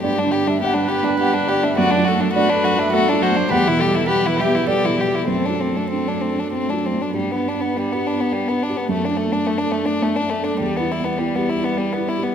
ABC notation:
X:1
M:3/4
L:1/16
Q:1/4=103
K:Dmix
V:1 name="Viola"
z4 B8 | d2 A2 B4 A2 c2 | B2 A2 B2 G2 A2 G2 | A8- A2 z2 |
z12 | z12 | z12 |]
V:2 name="Felt piano"
d3 e f3 g f2 d e | f4 d3 e e4 | f6 e2 d4 | c8- c2 z2 |
z12 | z12 | z12 |]
V:3 name="Felt piano"
(3G,,2 D,2 G,2 (3D2 B2 D2 (3G,2 D,2 G,2 | (3F,,2 F,2 A,2 (3D2 A2 D2 (3A,2 F,2 A,2 | (3E,,2 B,,2 G,2 (3B,2 B2 B,2 (3G,2 B,,2 G,2 | (3F,,2 F,2 A,2 (3D2 A2 D2 (3A,2 F,2 A,2 |
(3G,,2 D2 B,2- (3B,2 G2 D2 (3B,2 D2 G2 | (3F,,2 D2 A,2 (3D2 A2 D2 (3A,2 D2 A2 | (3E,,2 E2 B,2 (3E2 G2 E2 (3B,2 E2 G2 |]
V:4 name="Violin"
G D G D G D G D G D G D | F D F D F D F D F D F D | G E G E G E G E G E G E | C D C D C D C D C D C D |
G, B, D B, G, B, D B, G, B, D B, | A, D A, D A, D A, D A, D A, D | G, B, E B, G, B, E B, G, B, E B, |]
V:5 name="Cello" clef=bass
B, G, B, G, B, G, B, G, B, G, B, G, | A, F, A, F, A, F, A, F, A, F, A, F, | G, E, G, E, G, E, G, E, G, E, G, E, | A, F, A, F, A, F, A, F, A, F, A, F, |
B,12 | A,12 | G,12 |]